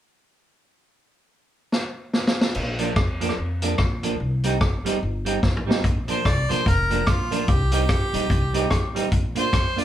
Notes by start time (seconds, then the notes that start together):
1.72 snare
2.13 snare
2.27 snare
2.41 snare
2.55 A#1, crash
2.79 F3 A#3 D4, closed hi-hat
2.96 F2, kick, cross-stick
3.21 F3 A#3 D4, closed hi-hat
3.29 cross-stick
3.38 F2
3.62 F3 A#3 D4, closed hi-hat
3.78 A#1, kick, cross-stick
4.03 F3 A#3 D4, closed hi-hat
4.20 C2
4.44 G3 C4 D#4, closed hi-hat
4.61 G1, kick, cross-stick
4.85 G3 C4 D#4, closed hi-hat
5.03 G1
5.25 G3 C4 D#4, closed hi-hat
5.43 A1, kick, snare
5.57 mid tom
5.67 G3 C4 D#4, snare
5.84 A#1, kick, closed hi-hat
6.08 F3 A#3 D4 C5, closed hi-hat
6.25 C2 D5, kick, cross-stick, closed hi-hat
6.49 A#1 F3 A#3 D4 C5, closed hi-hat
6.66 F1 A#4, kick, closed hi-hat
6.90 F3 A#3 D4, closed hi-hat
7.07 A#1 F4, kick, cross-stick, closed hi-hat
7.31 F3 A#3 D4, closed hi-hat
7.48 C2 G4, kick, closed hi-hat
7.72 G3 C4 D#4 G4, closed hi-hat
7.89 G1, kick, cross-stick, closed hi-hat
8.13 A#1 G3 C4 D#4, closed hi-hat
8.30 C2, kick, closed hi-hat
8.54 G3 C4 D#4, closed hi-hat
8.70 A1, kick, cross-stick, closed hi-hat
8.95 G3 C4 D#4, closed hi-hat
9.12 A#1, kick, closed hi-hat
9.35 A#3 D4 F4 C5, closed hi-hat
9.53 F2, kick, cross-stick, closed hi-hat
9.76 A#3 D4 F4 D5, closed hi-hat